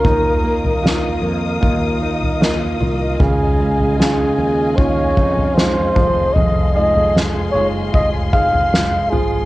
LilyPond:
<<
  \new Staff \with { instrumentName = "String section" } { \time 4/4 \key f \phrygian \tempo 4 = 76 << { <bes' ees'''>1 | <aes' aes''>2.~ <aes' aes''>8 <aes' c'''>8~ | <aes' c'''>1 | } \\ { <ees'' f''>1~ | <ees'' f''>1~ | <ees'' f''>1 | } >> }
  \new Staff \with { instrumentName = "Flugelhorn" } { \time 4/4 \key f \phrygian bes'4. r2 r8 | aes'4 aes'4 des''4 c''4 | ees''8 ees''8 r8 des''8 ees''8 f''4 aes'8 | }
  \new Staff \with { instrumentName = "Grand piano" } { \time 4/4 \key f \phrygian ees4 <ees' f' bes'>4 <ees' f' bes'>4 <ees' f' bes'>4 | des4 <des' ees' f'>4 <des' ees' f'>4 <des' ees' f'>8 f8~ | f8 <ees' f' aes'>4 <ees' f' aes'>4 <ees' f' aes'>4 f8 | }
  \new Staff \with { instrumentName = "Steel-string acoustic guitar" } { \time 4/4 \key f \phrygian ees8 bes8 f'8 bes8 f'8 ees'8 bes8 f'8 | des8 aes8 f'8 aes8 f'8 ees'8 aes8 f,8 | f,8 aes8 f'8 aes8 f'8 c'8 aes8 f'8 | }
  \new Staff \with { instrumentName = "Fretless electric bass" } { \clef bass \time 4/4 \key f \phrygian ees,4. f,8 ees,4. c,8 | des,4. ees,4 f,4 f,,8 | f,,4. ges,,8 f,,4. aes,,8 | }
  \new DrumStaff \with { instrumentName = "Drums" } \drummode { \time 4/4 <bd tomfh>8. tomfh16 sn4 <bd tomfh>8. tomfh16 sn8 tomfh8 | <bd tomfh>8. tomfh16 sn4 <bd tomfh>8 bd16 tomfh16 sn8 <bd tomfh>8 | tomfh8. tomfh16 sn4 <bd tomfh>8 bd16 tomfh16 sn8 tomfh8 | }
>>